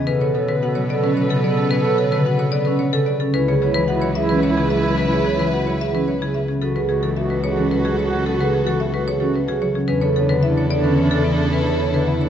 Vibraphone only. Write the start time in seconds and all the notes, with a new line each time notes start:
0.22 A4
0.35 C#5
0.62 F#4
0.90 A4
1.03 C#4
1.30 A4
1.58 C#4
1.85 A4
1.99 C#5
2.26 F#4
2.53 A4
2.67 C#4
2.94 A4
3.21 C#4
3.49 G#4
3.62 C#5
3.89 F#4
4.17 G#4
4.30 C#4
4.58 G#4
4.85 C#4
5.13 G#4
5.26 C#5
5.53 F#4
5.81 G#4
5.94 C#4
6.22 G#4
6.49 C#4
6.76 G#4
6.90 B4
7.17 F#4
7.44 G#4
7.58 C#4
7.86 G#4
8.13 C#4
8.40 G#4
8.54 B4
8.81 F#4
9.07 G#4
9.22 C#4
9.48 G#4
9.75 C#4
10.02 A4
10.16 C#5
10.43 E4
10.71 A4
10.85 C#4
11.12 A4
11.39 C#4
11.66 A4
11.80 C#5
12.07 E4